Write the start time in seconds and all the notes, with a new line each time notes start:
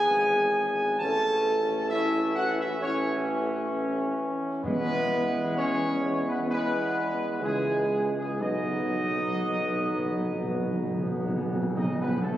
Already playing: E3 B3 G#4 G#5
0.10 G#1
0.99 A1 E3 C#4 A4 A5
1.90 E3 C#4 E4 E5
2.36 F#4 F#5
2.59 E4 E5
2.81 E3 C#4 C#5
4.63 E2 E3 G#3 B3 B4
5.56 C#4 C#5
6.25 B3 B4
6.47 E3 G#3 B3 B4
7.41 C#2 E3 G#3
7.45 G#4
8.15 G#3 G#4
8.40 B1 B2 F#3 B3 D#4 D#5
8.48 B2
8.55 B2
8.64 B2
8.72 B2
8.79 B2
8.87 B2
8.95 B2
9.03 B2
9.11 B2
9.18 B2
9.27 B2
9.35 B2
9.42 B2
9.51 B2
9.59 B2
9.67 B2
9.74 B2
9.83 B2
9.91 B2
9.98 B2
10.05 B2
10.12 B2
10.20 B2
10.28 B2
10.36 B2
10.44 B2
10.52 B2
10.59 B2
10.67 B2
10.75 B2
10.83 B2
10.90 B2
10.99 B2
11.06 B2
11.14 B2
11.21 B2
11.28 B2
11.37 B2
11.45 B2
11.54 B2
11.62 B2
11.69 B2
11.76 B2 D#4 D#5
11.85 B2
11.92 B2
12.01 B2 B3 B4
12.08 B2
12.16 B2
12.23 D2 A3 A4